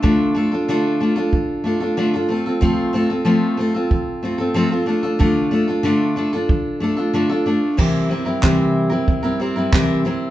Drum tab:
CC |--------|--------|--------|x-------|
CP |--------|--------|--------|--x---x-|
BD |o---o---|o---o---|o---o---|o-o-o-o-|